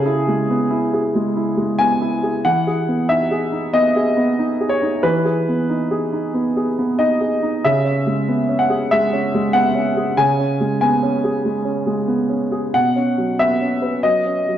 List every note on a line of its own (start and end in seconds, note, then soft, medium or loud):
0.00 1.10 C#3 medium
0.00 0.92 G#4 medium
0.06 0.40 E4 soft
0.28 0.62 G#3 soft
0.50 0.84 B3 soft
0.71 1.05 E4 soft
0.94 1.28 G#4 soft
1.15 1.49 G#3 soft
1.37 1.71 E4 soft
1.57 1.92 G#3 soft
1.79 2.14 B3 soft
1.79 2.44 G#5 medium
2.01 2.36 E4 soft
2.23 2.45 G#4 soft
2.45 3.70 E3 medium
2.45 3.09 F#5 medium
2.67 3.01 G#4 soft
2.88 3.22 B3 soft
3.09 3.44 D#4 soft
3.09 3.73 E5 medium
3.31 3.65 G#4 soft
3.52 3.87 D#4 soft
3.74 4.08 B3 soft
3.74 4.71 D#5 medium
3.96 4.30 G#4 soft
4.17 4.51 B3 soft
4.39 4.73 D#4 soft
4.61 4.95 G#4 soft
4.69 5.03 C#5 medium
4.82 5.17 D#4 soft
5.03 6.30 E3 medium
5.03 6.66 B4 medium
5.25 5.60 G#4 soft
5.49 5.83 B3 soft
5.70 6.04 D#4 soft
5.91 6.26 G#4 soft
6.13 6.47 D#4 soft
6.34 6.69 B3 soft
6.57 6.91 G#4 soft
6.79 7.13 B3 soft
6.99 7.33 D#4 soft
6.99 7.63 D#5 medium
7.21 7.55 G#4 soft
7.43 7.63 D#4 soft
7.64 8.88 C#3 medium
7.64 8.60 E5 medium
7.85 8.19 C#4 soft
8.07 8.40 G#3 soft
8.28 8.62 B3 soft
8.49 8.83 C#4 soft
8.59 8.91 F#5 medium
8.70 9.04 G#4 soft
8.91 9.26 G#3 soft
8.91 9.55 E5 medium
9.13 9.47 C#4 soft
9.35 9.68 G#3 soft
9.53 9.88 B3 soft
9.53 10.17 F#5 medium
9.75 10.09 C#4 soft
9.97 10.31 G#4 soft
10.17 11.41 C#3 medium
10.17 10.79 G#5 medium
10.39 10.73 C#4 soft
10.60 10.94 G#3 soft
10.81 11.15 B3 soft
10.81 11.76 G#5 medium
11.03 11.36 C#4 soft
11.24 11.58 G#4 soft
11.45 11.78 G#3 soft
11.65 11.99 C#4 soft
11.86 12.21 G#3 soft
12.08 12.42 B3 soft
12.29 12.64 C#4 soft
12.52 12.73 G#4 soft
12.74 13.99 B2 soft
12.74 13.39 F#5 medium
12.96 13.30 C#4 soft
13.18 13.52 F#3 soft
13.39 13.73 B3 soft
13.39 14.03 E5 medium
13.62 13.95 C#4 soft
13.82 14.16 B4 soft
14.03 14.37 F#3 soft
14.03 14.58 D#5 medium
14.26 14.58 C#4 soft
14.48 14.58 F#3 soft